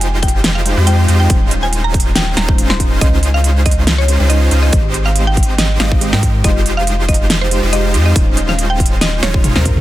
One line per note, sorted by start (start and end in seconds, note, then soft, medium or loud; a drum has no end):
0.00 0.75 F1 loud
0.00 0.62 G#3 medium
0.00 0.74 G#3 loud
0.00 0.63 D#4 medium
0.00 0.74 D#4 medium
0.00 0.63 F4 medium
0.00 0.74 F4 medium
0.00 0.64 G4 medium
0.00 0.74 G4 medium
0.00 0.64 C5 medium
0.00 0.74 C5 loud
0.00 0.11 G#5 loud
0.00 closed hi-hat medium
0.22 0.42 G5 loud
0.22 kick medium
0.22 closed hi-hat medium
0.28 closed hi-hat medium
0.44 snare loud
0.44 closed hi-hat medium
0.55 0.75 F5 loud
0.65 0.84 G#3 medium
0.65 0.85 D#4 medium
0.65 0.85 F4 medium
0.65 0.85 G4 medium
0.65 0.85 C5 medium
0.65 closed hi-hat medium
0.77 1.06 F2 loud
0.77 1.06 G#3 medium
0.77 1.06 D#4 medium
0.77 1.06 F4 medium
0.77 1.06 G4 medium
0.77 1.06 C5 loud
0.86 1.27 G#3 loud
0.86 1.27 D#4 medium
0.86 1.27 F4 medium
0.86 1.28 G4 medium
0.86 1.28 C5 loud
0.86 1.07 G5 medium
0.86 closed hi-hat medium
1.08 1.28 F2 loud
1.08 1.28 G#3 loud
1.08 1.28 D#4 medium
1.08 1.28 F4 loud
1.08 1.28 G4 loud
1.08 1.28 C5 loud
1.08 closed hi-hat medium
1.20 1.46 G5 medium
1.28 2.35 D#1 loud
1.28 2.34 G#3 medium
1.28 2.35 G#3 medium
1.28 2.34 C#4 medium
1.28 2.35 C#4 medium
1.28 2.35 D#4 medium
1.28 2.35 F4 medium
1.28 2.35 C5 medium
1.28 kick loud
1.28 closed hi-hat medium
1.32 2.36 C5 medium
1.51 closed hi-hat medium
1.63 1.75 G#5 medium
1.73 closed hi-hat medium
1.84 2.04 A#5 medium
1.94 kick medium
1.94 closed hi-hat soft
2.00 closed hi-hat medium
2.16 2.29 G5 medium
2.16 snare loud
2.16 closed hi-hat medium
2.37 3.03 D#1 loud
2.37 2.99 G#3 medium
2.37 2.99 C#4 medium
2.37 2.99 D#4 medium
2.37 2.99 F4 medium
2.37 2.99 C5 loud
2.37 2.57 A#5 medium
2.37 snare medium
2.37 closed hi-hat medium
2.47 2.77 G#3 loud
2.47 2.77 C#4 medium
2.47 2.77 D#4 medium
2.47 2.78 F4 medium
2.47 2.78 C5 loud
2.47 kick loud
2.58 closed hi-hat medium
2.70 2.90 C6 medium
2.70 snare medium
2.79 2.98 G#3 medium
2.79 2.99 C#4 medium
2.79 2.99 D#4 medium
2.79 2.99 F4 medium
2.79 2.99 A#4 medium
2.79 kick medium
2.79 closed hi-hat medium
2.99 4.18 C#2 medium
2.99 4.05 G#3 medium
2.99 4.17 G#3 medium
2.99 4.06 C#4 medium
2.99 4.17 C#4 medium
2.99 4.17 D#4 medium
2.99 4.06 D#4 medium
2.99 4.17 F4 medium
2.99 4.07 F4 medium
2.99 4.17 C5 loud
2.99 3.21 D#5 loud
2.99 kick loud
2.99 closed hi-hat medium
3.03 4.07 C5 medium
3.23 closed hi-hat medium
3.34 3.54 F5 loud
3.44 closed hi-hat medium
3.66 3.85 D#5 medium
3.66 kick medium
3.66 closed hi-hat soft
3.71 closed hi-hat medium
3.87 snare loud
3.87 closed hi-hat medium
3.98 4.18 C#5 loud
4.08 4.27 G#3 medium
4.08 4.27 C#4 medium
4.08 4.28 D#4 medium
4.08 4.28 F4 medium
4.08 4.28 C5 medium
4.08 closed hi-hat medium
4.20 4.49 C#2 loud
4.20 4.49 G#3 medium
4.20 4.49 C#4 medium
4.20 4.49 D#4 medium
4.20 4.49 F4 medium
4.20 4.49 C5 medium
4.29 4.70 G#3 loud
4.29 4.70 C#4 medium
4.29 4.71 D#4 medium
4.29 4.71 F4 medium
4.29 4.71 C5 loud
4.29 4.50 D#5 medium
4.29 closed hi-hat medium
4.51 4.71 C#2 loud
4.51 4.70 G#3 loud
4.51 4.70 C#4 medium
4.51 4.70 D#4 medium
4.51 4.70 F4 loud
4.51 4.70 C5 loud
4.51 closed hi-hat medium
4.63 4.89 D#5 medium
4.71 5.78 G#1 loud
4.71 5.77 G#3 medium
4.71 5.78 G#3 medium
4.71 5.77 C4 medium
4.71 5.78 C4 medium
4.71 5.78 D#4 medium
4.71 5.78 G4 medium
4.71 5.78 C5 medium
4.71 5.79 C5 medium
4.71 kick loud
4.71 closed hi-hat medium
4.94 closed hi-hat medium
5.06 5.18 F5 medium
5.16 closed hi-hat medium
5.27 5.47 G5 loud
5.37 kick medium
5.37 closed hi-hat soft
5.43 closed hi-hat medium
5.58 5.72 D#5 medium
5.58 snare loud
5.58 closed hi-hat medium
5.79 6.11 G#1 loud
5.79 5.99 G#3 medium
5.79 6.10 G#3 medium
5.79 5.99 C4 medium
5.79 6.10 C4 medium
5.79 6.10 D#4 medium
5.79 5.99 D#4 medium
5.79 6.10 G4 medium
5.79 5.99 G4 medium
5.79 6.00 C5 medium
5.79 6.10 D#5 loud
5.79 6.00 F5 medium
5.79 snare medium
5.79 closed hi-hat medium
5.92 kick medium
6.00 6.41 G#3 loud
6.00 6.42 C4 medium
6.00 6.42 D#4 medium
6.00 6.42 G4 medium
6.00 6.42 C5 loud
6.00 closed hi-hat medium
6.13 6.42 G#2 medium
6.13 6.30 G#3 medium
6.13 6.30 C4 medium
6.13 6.30 D#4 medium
6.13 6.30 G4 medium
6.13 6.30 A#4 medium
6.13 6.32 G5 medium
6.13 snare medium
6.23 kick medium
6.23 closed hi-hat medium
6.43 7.61 F1 loud
6.43 7.48 G#3 medium
6.43 7.60 G#3 loud
6.43 7.49 D#4 medium
6.43 7.60 D#4 medium
6.43 7.60 F4 medium
6.43 7.49 F4 medium
6.43 7.60 G4 medium
6.43 7.50 G4 medium
6.43 7.60 C5 loud
6.43 6.64 D#5 loud
6.43 kick loud
6.43 closed hi-hat medium
6.47 7.50 C5 medium
6.66 closed hi-hat medium
6.77 6.97 F5 loud
6.87 closed hi-hat medium
7.08 7.28 D#5 loud
7.08 kick medium
7.08 closed hi-hat soft
7.14 closed hi-hat medium
7.30 snare loud
7.30 closed hi-hat medium
7.41 7.61 C5 loud
7.51 7.70 G#3 medium
7.51 7.70 D#4 medium
7.51 7.71 F4 medium
7.51 7.71 G4 medium
7.51 7.71 C5 medium
7.51 closed hi-hat medium
7.63 7.96 F1 loud
7.63 7.92 G#3 medium
7.63 7.92 D#4 medium
7.63 7.92 F4 medium
7.63 7.92 G4 medium
7.63 7.92 C5 medium
7.72 8.13 G#3 loud
7.72 8.13 D#4 medium
7.72 8.13 F4 medium
7.72 8.14 G4 medium
7.72 8.14 C5 loud
7.72 7.93 D#5 loud
7.72 closed hi-hat medium
7.94 8.14 F2 loud
7.94 8.13 G#3 loud
7.94 8.13 D#4 loud
7.94 8.13 F4 medium
7.94 8.13 G4 loud
7.94 8.13 C5 loud
7.94 closed hi-hat medium
8.06 8.32 D#5 medium
8.14 9.21 D#1 loud
8.14 9.20 G#3 medium
8.14 9.21 G#3 medium
8.14 9.20 C#4 medium
8.14 9.21 C#4 medium
8.14 9.21 D#4 medium
8.14 9.21 F4 medium
8.14 9.21 C5 medium
8.14 kick loud
8.14 closed hi-hat medium
8.18 9.22 C5 medium
8.37 closed hi-hat medium
8.49 8.61 F5 loud
8.49 snare soft
8.59 closed hi-hat medium
8.70 8.89 G5 loud
8.80 kick medium
8.80 closed hi-hat medium
8.86 closed hi-hat medium
9.01 9.15 D#5 medium
9.01 snare loud
9.01 closed hi-hat medium
9.23 9.53 D#1 medium
9.23 9.53 G#3 medium
9.23 9.53 C#4 medium
9.23 9.53 D#4 medium
9.23 9.53 F4 medium
9.23 9.43 C#5 loud
9.23 9.53 C#5 medium
9.23 snare medium
9.23 closed hi-hat medium
9.23 high tom medium
9.33 9.63 G#3 loud
9.33 9.63 C#4 medium
9.33 9.63 D#4 medium
9.33 9.64 F4 medium
9.33 9.64 C5 loud
9.33 kick loud
9.44 closed hi-hat medium
9.44 mid tom medium
9.55 9.81 D#2 loud
9.55 9.73 G#3 medium
9.55 9.73 C#4 medium
9.55 9.73 D#4 medium
9.55 9.73 F4 medium
9.55 9.73 A#4 medium
9.55 9.75 C5 loud
9.55 snare medium
9.55 mid tom medium
9.65 9.81 G#3 medium
9.65 9.81 C#4 medium
9.65 9.81 D#4 medium
9.65 9.81 F4 medium
9.65 9.81 A#4 medium
9.65 kick medium
9.65 closed hi-hat medium
9.65 mid tom loud
9.77 mid tom medium